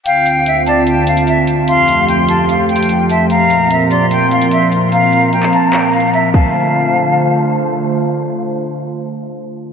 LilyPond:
<<
  \new Staff \with { instrumentName = "Flute" } { \time 4/4 \key d \minor \tempo 4 = 148 g''4. a''2~ a''8 | c'''2 r4 g''8 a''8 | bes''4. c'''2~ c'''8 | bes''2.~ bes''8 a''8~ |
a''2. r4 | r1 | }
  \new Staff \with { instrumentName = "Flute" } { \time 4/4 \key d \minor f''4 e''8 d''8 g''8 f''8 e''8 r8 | f''4 g''8 a''8 f''8 g''4 e''8 | f''4 e''8 d''8 g''8 f''8 e''8 r8 | f''4 g''8 a''8 g''8 f''8 e''8 f''8~ |
f''2. r4 | r1 | }
  \new Staff \with { instrumentName = "Analog synth pad" } { \time 4/4 \key d \minor << { <d, c' f'>1 | <f, a g'>1 | <bes, c' bes'>1~ | <bes, c' bes'>2.~ <bes, c' bes'>8 <d a f' c''>8~ |
<d a f' c''>1~ | <d a f' c''>1 | } \\ { d1 | f1~ | f1~ | f2.~ f8 r8 |
r1 | r1 | } >> }
  \new DrumStaff \with { instrumentName = "Drums" } \drummode { \time 4/4 hh8 hh8 hh8 hh8 hh8 hh16 hh16 hh8 hh8 | hh8 hh8 hh8 hh8 \tuplet 3/2 { hh16 r16 r16 hh16 hh16 hh16 } hh8 hh8 | hh8 hh8 hh8 hh8 hh8 hh16 hh16 hh8 hh8 | hh8 hh8 hh16 hc16 hh8 \tuplet 3/2 { <hc hh>16 r16 r16 hh16 hh16 hh16 } hh8 <cymc bd>8 |
r4 r4 r4 r4 | r4 r4 r4 r4 | }
>>